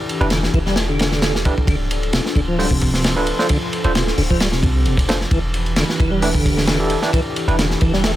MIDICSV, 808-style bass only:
0, 0, Header, 1, 2, 480
1, 0, Start_track
1, 0, Tempo, 454545
1, 1772, Time_signature, 4, 2, 24, 8
1, 8620, End_track
2, 0, Start_track
2, 0, Title_t, "808-style bass"
2, 0, Program_c, 0, 38
2, 217, Note_on_c, 0, 28, 96
2, 511, Note_off_c, 0, 28, 0
2, 567, Note_on_c, 0, 28, 80
2, 1589, Note_off_c, 0, 28, 0
2, 1767, Note_on_c, 0, 26, 99
2, 2309, Note_off_c, 0, 26, 0
2, 2487, Note_on_c, 0, 26, 82
2, 3509, Note_off_c, 0, 26, 0
2, 4059, Note_on_c, 0, 26, 96
2, 4352, Note_off_c, 0, 26, 0
2, 4410, Note_on_c, 0, 26, 82
2, 4881, Note_off_c, 0, 26, 0
2, 4887, Note_on_c, 0, 36, 97
2, 5129, Note_on_c, 0, 29, 85
2, 5145, Note_off_c, 0, 36, 0
2, 5550, Note_off_c, 0, 29, 0
2, 5608, Note_on_c, 0, 28, 103
2, 6149, Note_off_c, 0, 28, 0
2, 6332, Note_on_c, 0, 28, 82
2, 7351, Note_off_c, 0, 28, 0
2, 7895, Note_on_c, 0, 28, 95
2, 8189, Note_off_c, 0, 28, 0
2, 8254, Note_on_c, 0, 28, 80
2, 8620, Note_off_c, 0, 28, 0
2, 8620, End_track
0, 0, End_of_file